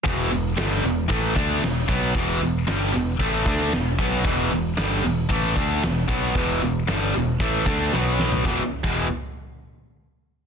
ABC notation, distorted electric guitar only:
X:1
M:4/4
L:1/16
Q:1/4=114
K:Em
V:1 name="Distorted electric guitar" clef=bass
[E,,B,,E,]2 [E,,B,,]2 [G,,D,G,]2 [E,,B,,]2 [A,,E,A,]2 [D,A,D]2 [E,,B,,]2 [B,,F,B,]2 | [E,,B,,E,]2 [E,,B,,]2 [G,,D,G,]2 [E,,B,,]2 [A,,E,A,]2 [D,A,D]2 [E,,B,,]2 [B,,F,B,]2 | [E,,B,,E,]2 [E,,B,,]2 [G,,D,G,]2 [E,,B,,]2 [A,,E,A,]2 [D,A,D]2 [E,,B,,]2 [B,,F,B,]2 | [E,,B,,E,]2 [E,,B,,]2 [G,,D,G,]2 [E,,B,,]2 [A,,E,A,]2 [D,A,D]2 [B,,F,B,]4 |
[E,,B,,E,] z2 [E,,B,,E,]2 z8 z3 |]